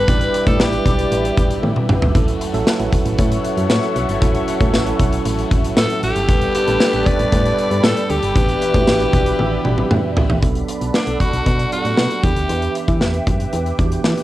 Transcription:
Already playing: G3 B3 D4 B4 G5 D6
0.07 A1 E2 B2 E3 G3 D4 E4 G4 B4 D5 E5, kick, closed hi-hat
0.21 closed hi-hat
0.33 B2 E3, closed hi-hat
0.46 A2 G3 D4 E4 A4 B4, kick, closed hi-hat
0.60 A1 G4, snare
0.72 G3 D4 E4 B4, closed hi-hat
0.86 B1, kick, closed hi-hat
0.99 closed hi-hat
1.10 A1 E2 B2, closed hi-hat
1.14 E3
1.25 closed hi-hat
1.37 A1, kick, closed hi-hat
1.51 closed hi-hat
1.63 A2, high tom
1.76 mid tom
1.89 A1, mid tom
2.02 G1, floor tom
2.14 A1 A2 E3 F#3 A3 C#4 E4 A4 F#5 C#6, kick, closed hi-hat
2.28 closed hi-hat
2.40 E3 A3, closed hi-hat
2.53 A1 F#3 C#4 E4 A4, closed hi-hat
2.67 snare, tambourine
2.79 A1 F#3 C#4 E4 B4, closed hi-hat
2.93 kick, closed hi-hat
3.05 A1, closed hi-hat
3.18 A2 E3 A3 F#4 A4 C#5, kick, closed hi-hat
3.32 closed hi-hat
3.44 closed hi-hat
3.57 F#2, closed hi-hat
3.70 A2, snare, tambourine
3.83 closed hi-hat
3.95 B1 E3 A3, closed hi-hat
4.09 G1, closed hi-hat
4.21 A1 A2 E3 F#3 A3 C#4 E4 A4, kick, closed hi-hat
4.35 closed hi-hat
4.47 E3 A3, closed hi-hat
4.60 A2 F#3 C#4 E4 A4, kick, closed hi-hat
4.74 A1, snare, tambourine
4.86 F#3 C#4 E4 A4, closed hi-hat
5.00 B1, kick, closed hi-hat
5.13 closed hi-hat
5.25 A1 A2 E3 A3, closed hi-hat
5.39 closed hi-hat
5.51 A1, kick, closed hi-hat
5.64 closed hi-hat
5.77 A2 A4, snare, tambourine
5.90 closed hi-hat
6.02 A1 E3 A3 G4, closed hi-hat
6.16 G1, closed hi-hat
6.28 A1 G2 D3 G3 B3 D4 G4 A4 B4 D5 G5 B5, kick, closed hi-hat
6.42 closed hi-hat
6.54 D3 G3 G4, closed hi-hat
6.67 A1 G3 B3 D4 A4, closed hi-hat
6.80 snare, tambourine
6.93 A1 G3 B3 D4 A4, closed hi-hat
7.06 D5, kick, closed hi-hat
7.19 A1, closed hi-hat
7.32 G2 A2 D3 G3, kick, closed hi-hat
7.45 closed hi-hat
7.58 closed hi-hat
7.71 G2, closed hi-hat
7.84 A2 A4, snare, tambourine
7.97 closed hi-hat
8.09 D2 D3 G3 G4, closed hi-hat
8.23 G1, closed hi-hat
8.35 A1 E2 B2 E3 B3 D4 E4 G4 B4 E5, kick, closed hi-hat
8.49 closed hi-hat
8.61 B2 E3, closed hi-hat
8.74 A2 E3 B3 D4 F#4, kick, closed hi-hat
8.87 A1, snare, tambourine
9.00 E3 B3 D4 G4, closed hi-hat
9.13 B1, kick, closed hi-hat
9.26 closed hi-hat
9.38 A1 E2 B2 E3, high tom
9.65 A1, mid tom
9.78 mid tom
9.91 A2, mid tom
10.16 A1 B2 E3, floor tom
10.30 A1, floor tom
10.42 B1 F#3 B3 D4 A4 D5 F#5 B5, kick, closed hi-hat
10.55 closed hi-hat
10.68 closed hi-hat
10.81 B1, closed hi-hat
10.94 D4, snare
11.07 B1, closed hi-hat
11.20 F#4, kick, closed hi-hat
11.33 B1, closed hi-hat
11.46 B2, kick, closed hi-hat
11.59 closed hi-hat
11.71 F#3 B3 D4 F#4 G4, closed hi-hat
11.79 A4
11.85 A2, closed hi-hat
11.97 B2, snare
12.11 closed hi-hat
12.23 E2 E3 B3 D4 G4 B4 E5 G5 D6, kick, closed hi-hat
12.36 D2, closed hi-hat
12.49 E2, closed hi-hat
12.62 closed hi-hat
12.75 closed hi-hat
12.88 E3, kick, closed hi-hat
13.01 E2, snare
13.14 closed hi-hat
13.27 F#2, kick, closed hi-hat
13.40 closed hi-hat
13.53 E2, closed hi-hat
13.66 closed hi-hat
13.78 E2 E3 B3 D4 F#4, kick, closed hi-hat
13.86 G4
13.92 closed hi-hat
14.04 E3, snare
14.17 closed hi-hat

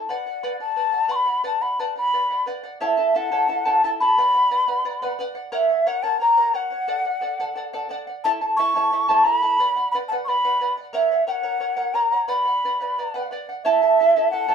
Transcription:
0.09 B4 D5 F#5
0.26 D5 F#5
0.43 B4 D5 F#5
0.60 D5 F#5 A5
0.76 B4 D5 F#5
0.93 D5 F#5
1.08 B4 D5 F#5 C#6
1.15 B5
1.26 D5 F#5
1.44 B4 D5 F#5 A5
1.61 D5 F#5 B5
1.79 B4 D5 F#5 A5
1.96 D5 F#5 B5
2.13 B4 D5 F#5
2.30 D5 F#5
2.46 B4 D5 F#5
2.64 D5 F#5
2.80 E4 A4 C#5 E5 F#5 A5
2.87 E5
2.97 E4 A4 A5
3.14 E4 A4 E5 F#5 A5
3.32 E4 A4 C#5 E5 A5
3.48 E4 A4 E5 A5
3.65 E4 A4 C#5 E5 A5
3.84 E4 A4 E5 A5
4.00 E4 A4 A5 B5
4.18 B4 D5 F#5
4.34 D5 F#5
4.51 B4 D5 F#5
4.68 B4 D5 F#5
4.85 B4 D5 F#5
5.02 B4 D5 F#5
5.19 B4 D5 F#5
5.35 D5 F#5
5.52 A#4 C#5 E5 F#5
5.69 C#5 F#5
5.86 A#4 C#5 F#5
6.03 A#4 C#5 F#5 A5
6.20 A#4 C#5 F#5 A#5
6.37 A#4 C#5 F#5
6.54 A#4 C#5 F#5
6.70 C#5 F#5
6.88 A4 D5 F#5
7.05 D5 F#5
7.21 A4 D5 F#5
7.40 A4 D5 F#5
7.55 A4 D5 F#5
7.73 A4 D5 F#5
7.89 A4 D5 F#5
8.07 D5 F#5
8.24 E4 A4 C#5 E5 A5
8.41 E4 A4 A5
8.56 E4 A4 E5 A5 C#6
8.75 E4 A4 C#5 E5 A5
8.93 E4 A4 E5 A5
9.09 E4 A4 C#5 E5 A5
9.24 E4 A4 E5 A5 B5
9.42 E4 A4 A5
9.59 B4 D5 F#5
9.76 D5 F#5
9.91 B4 D5 B5
9.95 F#5
10.08 F#5 A5
10.12 B4 D5
10.24 B4 D5 B5 C#6
10.29 F#5
10.44 B4 D5 F#5
10.61 B4 D5 F#5
10.77 D5 F#5
10.93 A#4 C#5 E5 F#5
11.12 C#5 F#5
11.27 A#4 C#5 F#5 G5
11.31 F#5
11.43 A#4 C#5 F#5
11.60 A#4 C#5 F#5
11.77 A#4 C#5 F#5
11.94 A#4 C#5 F#5 A#5
12.12 C#5 F#5
12.28 B4 D5 F#5 B5
12.45 D5 F#5
12.64 B4 D5 F#5
12.80 B4 D5 F#5
12.98 B4 D5 F#5
13.14 B4 D5 F#5
13.31 B4 D5 F#5
13.49 D5 F#5
13.64 E4 A4 C#5 E5 A5
13.82 E4 A4 A5
14.00 E4 A4 E5 A5
14.16 E4 A4 C#5 E5 A5
14.30 E4 A4 E5 F#5 A5
14.48 E4 A4 C#5 E5 A5

